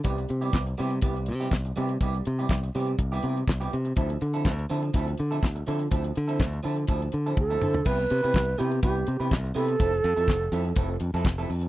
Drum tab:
CC |----------------|----------------|----------------|----------------|
HH |xxxx-xoxxxxx-xxx|xxxx-xoxxxxx-xxx|xxxx-xoxxxxx-xxx|xxxx-xoxxxxx----|
CP |----x-------x---|----x-------x---|----x-------x---|----x-----------|
SD |----o-------o---|----o-------o---|----o-------o---|----o-----------|
T1 |----------------|----------------|----------------|------------o---|
T2 |----------------|----------------|----------------|--------------o-|
FT |----------------|----------------|----------------|---------------o|
BD |o---o---o---o---|o---o---o---o---|o---o---o---o---|o---o---o---o---|

CC |x---------------|----------------|
HH |-xxx--xxx-xx-xox|xxxx--xxx-xx--ox|
CP |----x-------x---|----x-------x---|
SD |----o-------o---|----o-------o---|
T1 |----------------|----------------|
T2 |----------------|----------------|
FT |----------------|----------------|
BD |o---o---o---o---|o---o---o---o---|